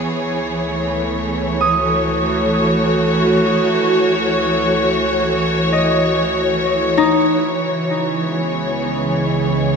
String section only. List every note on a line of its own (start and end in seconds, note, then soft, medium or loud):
0.00 9.76 E3 medium
0.00 1.61 B3 medium
0.00 1.60 G#4 medium
0.00 9.76 C#5 medium
0.66 7.52 A3 medium
1.77 8.70 F#4 medium
8.16 9.76 B3 medium
8.16 9.76 G#4 medium